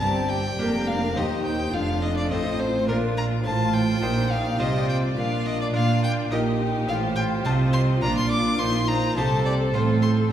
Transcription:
0.00 G1 G2 C4 G4 D5 A5
0.29 G5
0.58 F1 F2 A#3 D4 G4 A#4 D5
0.88 D4 F5
1.16 D#2 C4 D#4 G4 C5 D#5
1.45 G5
1.73 F1 F2 D4 F4 A4 F5
2.02 D#5
2.17 D5
2.30 A1 A2 C4 D#4 A4 D#5
2.60 C5
2.87 A#1 A#2 D4 F4 A#4
3.17 A#5
3.44 A1 A2 F4 C5 A5
3.74 G5
4.01 A#1 A#2 D#4 F4 G4 C5
4.31 D5 F5
4.59 C2 C3 C4 D#4 F4 C5 D#5
4.89 G5
5.16 A#1 A#2 D4 F4 F5
5.46 D#5
5.61 D5
5.74 A#2 A#3 D4 F4 A#4 F5
6.04 G5
6.30 A#1 A#2 D#4 G4 A#4 D#5
6.59 D#4
6.87 A1 A2 F4 C5 F5
7.16 G5
7.44 C2 C3 C4 D#4 F4 C5 D#5 A5
7.73 C6
8.02 A#1 A#2 D4 F4 A#4 D5 A#5
8.17 C6
8.31 D6
8.59 A#1 A#2 D#4 C5 C6
8.88 A#5
9.16 C2 C3 C4 D#4 G4 A4 C5 A5
9.45 D5
9.74 A1 A2 C4 F4 C5
10.02 C6

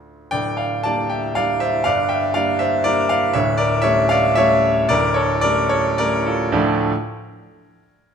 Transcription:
Already playing: D2 D3 A3 F4
0.31 D1 D2 D5 G5
0.57 D5 F5
0.83 G3 A#3 D4 D5 A5
1.10 E5 G5
1.35 G3 A#3 D4 D5 F5
1.60 C5 E5
1.84 G1 G2 D5 F5
2.09 E5 G5
2.34 G3 A#3 D4 D5 F5
2.59 C5 E5
2.84 G3 A#3 D4 A#4 D5
3.09 D5 F5
3.33 D1 D2 C#5 E5
3.58 A#4 D5
3.82 G3 A3 C#4 C#5 E5
4.09 D5 F5
4.35 G3 A3 C#4 C#5 E5
4.89 D1 D2 A#4 D5
5.14 A4 C#5
5.41 G3 A3 C#4 A#4 D5
5.69 A4 C#5
5.98 G3 A3 C#4 A#4 D5
6.26 F4 A4
6.52 D2 A2 F3 A3 D4 F4 D5

